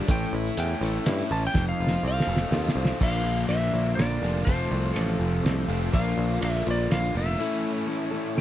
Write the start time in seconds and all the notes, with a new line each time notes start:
0.06 A1 A2 E3 A3 C#4 E4 A4 C#5, kick, closed hi-hat, tambourine
0.11 G5
0.22 tambourine
0.33 A1 E4, tambourine
0.46 tambourine
0.57 E2 A3 C#4 E4 A4 G5, closed hi-hat
0.81 A1 A3 C#4 E4 A4, tambourine
0.95 tambourine
1.06 G2 A3 C#4 E4 A4, snare, closed hi-hat
1.18 tambourine
1.31 A1 C#4 A5
1.44 G5, tambourine
1.54 F1 F2 F3 C4 D#4 F4 A4 C5 D#5, kick, snare, tambourine
1.68 F5, tambourine
1.80 F1 F4
1.87 snare
1.92 tambourine
2.03 C2 C4 D#4 A4 C5, tambourine
2.08 F5
2.20 snare
2.27 F1 A3, tambourine
2.36 snare
2.51 D#2 C4 D#4 F4 A4 C5, snare
2.64 tambourine
2.69 snare
2.75 C2 C4 D#4 A4 C5
2.85 snare
3.00 A#1 A#2 D3 F3 A#3 D4 F4 A#4 D5 F5, kick, crash
3.24 A#1
3.49 A#1 A#3 D4 F4 A#4 E5, ride
3.73 A#1 A#3 D4 F4 A#4
3.95 A#1 A#3 D4 D5, ride
3.99 F4 A#4, snare
4.22 F1 A#2 D3 A#3 D4 F4 A#4
4.44 F1 F2 C3 F3 A3 C4 F4 A4 C5, kick, ride
4.72 C2
4.94 A1 A3 C4 F4 A4, ride
5.19 F1 C4 F4 A4
5.43 C2 A3 C4 F4 A4, snare, ride
5.68 F1 F2 C3 F3 A3 C4 F4
5.91 A#1 A#2 D3 F3 A#3 D4 F4 A#4 D5 F5, kick, ride, tambourine
6.18 A#1, tambourine
6.31 tambourine
6.41 A#1 A#3 D4 F4 A#4 E5, ride
6.66 A#1 A#3 D4 F4 A#4, tambourine
6.71 D5
6.89 A#1 A#3 D4 F4 A#4 F5, snare, ride
7.02 tambourine
7.14 F1 A#2 D3 A#3 D4 F4 E5
7.38 A2 E3 A3 C#4 E4 A4 C#5
7.87 A3 C#4 E4 A4
8.11 A3 C#4 E4 A4 D5
8.36 A3 C#4 E4 A4, snare